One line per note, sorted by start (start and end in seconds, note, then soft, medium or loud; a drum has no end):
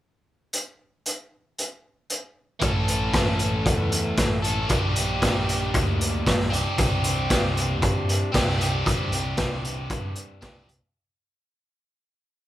0.53 closed hi-hat medium
1.06 closed hi-hat medium
1.58 closed hi-hat medium
2.10 closed hi-hat medium
2.60 3.10 A1 medium
2.60 4.42 E3 medium
2.60 4.43 A3 medium
2.60 4.43 C#4 medium
2.60 kick loud
2.60 closed hi-hat medium
2.64 4.41 A4 medium
2.88 closed hi-hat medium
3.13 3.66 A1 medium
3.13 kick loud
3.13 snare loud
3.13 closed hi-hat medium
3.39 closed hi-hat medium
3.66 4.14 E2 loud
3.66 kick loud
3.66 closed hi-hat medium
3.92 closed hi-hat medium
4.17 4.66 A1 medium
4.17 kick medium
4.17 snare loud
4.17 closed hi-hat medium
4.42 4.70 E3 medium
4.42 4.68 A3 medium
4.42 4.69 C#4 medium
4.42 4.68 A4 medium
4.42 closed hi-hat medium
4.68 4.94 A#1 medium
4.68 6.50 A#3 medium
4.68 6.52 D4 medium
4.68 kick loud
4.68 closed hi-hat medium
4.72 6.54 G4 loud
4.96 5.20 A#1 medium
4.96 closed hi-hat medium
5.22 5.70 A#1 loud
5.22 kick loud
5.22 snare loud
5.22 closed hi-hat medium
5.49 closed hi-hat medium
5.74 6.22 D2 medium
5.74 kick loud
5.74 closed hi-hat medium
6.01 closed hi-hat medium
6.26 6.50 A#1 medium
6.26 kick loud
6.26 snare loud
6.26 closed hi-hat medium
6.40 snare soft
6.50 6.64 C2 medium
6.50 8.32 C4 medium
6.50 8.34 D4 medium
6.50 closed hi-hat medium
6.54 8.36 G4 medium
6.78 7.26 C2 loud
6.78 kick loud
6.78 closed hi-hat medium
7.04 closed hi-hat medium
7.30 7.83 C2 medium
7.30 kick loud
7.30 snare loud
7.30 closed hi-hat loud
7.57 closed hi-hat medium
7.82 8.31 G2 medium
7.82 kick loud
7.82 closed hi-hat medium
8.09 closed hi-hat medium
8.32 8.82 C2 medium
8.32 8.58 C4 medium
8.32 8.60 D4 medium
8.32 kick loud
8.32 snare medium
8.32 closed hi-hat medium
8.36 8.62 G4 medium
8.47 snare soft
8.59 10.40 C4 medium
8.59 10.42 D4 medium
8.59 10.42 G4 loud
8.59 closed hi-hat medium
8.86 9.10 G2 loud
8.86 kick loud
8.86 closed hi-hat loud
9.11 9.35 C2 loud
9.11 closed hi-hat medium
9.37 9.87 C2 loud
9.37 kick loud
9.37 snare loud
9.37 closed hi-hat medium
9.65 closed hi-hat medium
9.90 10.39 G2 medium
9.90 kick loud
9.90 closed hi-hat medium
10.15 closed hi-hat medium
10.41 10.67 C2 loud
10.41 10.67 C4 medium
10.41 10.68 D4 medium
10.41 kick medium
10.41 snare loud
10.41 closed hi-hat medium
10.45 10.69 G4 medium
10.69 10.81 C2 medium
10.69 closed hi-hat medium